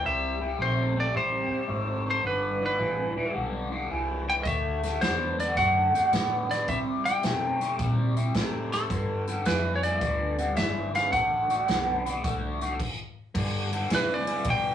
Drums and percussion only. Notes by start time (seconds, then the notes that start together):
4.45 kick, closed hi-hat
4.83 snare, closed hi-hat
5.01 snare, closed hi-hat
5.39 closed hi-hat
5.57 kick, closed hi-hat
5.95 closed hi-hat
6.13 snare, closed hi-hat
6.51 snare, closed hi-hat
6.68 kick, closed hi-hat
7.05 closed hi-hat
7.23 snare, closed hi-hat
7.61 closed hi-hat
7.79 kick, closed hi-hat
8.16 closed hi-hat
8.34 kick, snare, closed hi-hat
8.72 snare, closed hi-hat
8.90 kick, closed hi-hat
9.27 closed hi-hat
9.45 snare, closed hi-hat
9.83 closed hi-hat
10.01 kick, closed hi-hat
10.38 closed hi-hat
10.56 snare, closed hi-hat
10.95 snare, closed hi-hat
11.13 kick, closed hi-hat
11.50 closed hi-hat
11.68 snare, closed hi-hat
12.06 closed hi-hat
12.24 kick, closed hi-hat
12.61 closed hi-hat
12.79 kick, crash
13.35 kick, crash
13.73 ride
13.90 snare, ride
14.27 ride
14.44 kick, ride